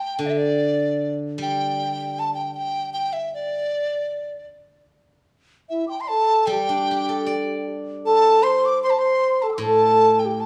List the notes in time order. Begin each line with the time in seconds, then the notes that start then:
Already playing: G5
0.19 D3
0.26 D5 E5
0.37 D5
1.38 G3
1.42 G5
2.19 A5
2.34 G5
2.55 G5
2.94 G5
3.13 E5
3.34 D5
5.69 E4 E5
5.87 G5 C6 D6
5.91 A5
5.96 G5
6.01 E5 C6
6.06 A4 D5 A5
6.46 G3 G5
6.51 G4
6.69 D4
6.91 G4
7.09 A4
7.26 D5
8.05 A4 A5
8.42 C5 C6
8.65 D6
8.83 C5 C6
8.90 A5
8.97 C5 C6
9.42 A4 A5
9.49 G5 E6
9.54 A2 C6 D6
9.61 A4 A5
10.19 G5
10.25 G4
10.40 A5